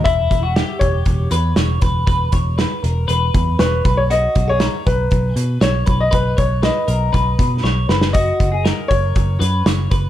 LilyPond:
<<
  \new Staff \with { instrumentName = "Upright piano" } { \time 4/4 \key e \lydian \tempo 4 = 119 e''4. cis''2 r8 | r2. b'8. cis''16 | dis''8. cis''8. b'4. cis''8. dis''16 | b'8 cis''8 dis''2 r4 |
dis''4. cis''2 r8 | }
  \new Staff \with { instrumentName = "Clean electric guitar" } { \time 4/4 \key e \lydian e'8. fis'16 g'4. b'8 cis''8 b'8 | b'8 cis''8 b'8 ais'8 b'4 cis''8 b'8 | fis'8. gis'16 ais''4. b'8 cis''8 b'8 | b'8 cis''8 b'8 ais'8 b'4 cis''8 b'8 |
fis'8. gis'16 ais'4. b'8 cis''8 b'8 | }
  \new Staff \with { instrumentName = "Picked electric bass" } { \clef bass \time 4/4 \key e \lydian e,,8 e,,8. r16 e,,8 e,,8 e,8 e,,8 e,,8 | e,,8 e,,8. r16 e,,8 e,,8 e,8 e,,8 b,,8~ | b,,8 b,,8. r16 b,,8 b,,8 b,8 b,,8 b,,8 | b,,8 b,,8. r16 b,,8 b,,8 b,8 b,,8 fis,,8~ |
fis,,8 fis,,8. r16 fis,,8 fis,,8 fis,8 fis,,8 fis,,8 | }
  \new DrumStaff \with { instrumentName = "Drums" } \drummode { \time 4/4 <hh bd>8 <hh bd>8 <hh sn>8 <hh bd>8 <hh bd>8 hh8 <hh sn>8 <hh bd>8 | <hh bd>8 <hh bd>8 <hh sn>8 hh8 hh8 <hh bd>8 <hh sn>8 <hh bd>8 | hh8 <hh bd>8 <hh sn>8 <hh bd>8 <hh bd>8 hh8 <hh sn>8 <hh bd>8 | <hh bd>8 <hh bd>8 <hh sn>8 hh8 <hh bd>8 <hh bd>8 sn8 sn16 sn16 |
<hh bd>8 <hh bd>8 <hh sn>8 <hh bd>8 <hh bd>8 hh8 <hh sn>8 <hh bd>8 | }
>>